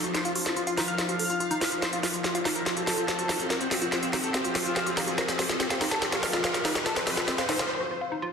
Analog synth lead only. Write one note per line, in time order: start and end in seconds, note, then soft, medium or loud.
0.14 0.21 C5 loud
0.25 0.31 F4 medium
0.35 0.42 F4 medium
0.56 0.63 F4 medium
0.67 0.73 F4 medium
0.77 0.84 F4 medium
0.88 0.94 F5 medium
0.98 1.05 F4 medium
1.09 1.74 F5 loud
1.82 1.89 C5 loud
1.93 1.99 F4 medium
2.03 2.10 F4 medium
2.24 2.31 F4 medium
2.35 2.41 F4 medium
2.45 2.51 F4 medium
2.56 2.62 A#4 medium
2.66 2.72 F4 medium
2.77 3.42 A4 loud
3.50 3.56 A#4 loud
3.61 3.67 C4 medium
3.71 3.77 C4 medium
3.92 3.98 C4 medium
4.03 4.09 C4 medium
4.13 4.19 C4 medium
4.24 4.30 A4 medium
4.34 4.40 C4 medium
4.45 5.10 F4 loud
5.18 5.24 A#4 loud
5.28 5.35 C4 medium
5.39 5.45 C4 medium
5.60 5.66 C4 medium
5.70 5.77 C4 medium
5.81 5.87 C4 medium
5.91 5.98 A4 medium
6.02 6.08 C4 medium
6.12 6.77 F4 loud
6.86 6.92 A4 loud
6.96 7.03 C4 medium
7.07 7.13 C4 medium
7.28 7.34 C4 medium
7.38 7.44 C4 medium
7.49 7.55 C4 medium
7.59 7.65 F4 medium